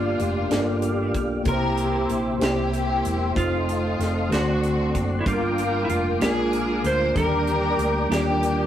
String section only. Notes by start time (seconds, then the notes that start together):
Already playing: A#3 D4 F4
1.46 E4 G4 A#4
2.42 A#3 E4 G4
3.38 A3 C4 F4
4.34 A3 C4 F#4
5.29 A#3 D4 F4
6.24 D4 F4 G#4
6.89 C5
7.19 D4 G4 A#4
8.12 A#3 D4 G4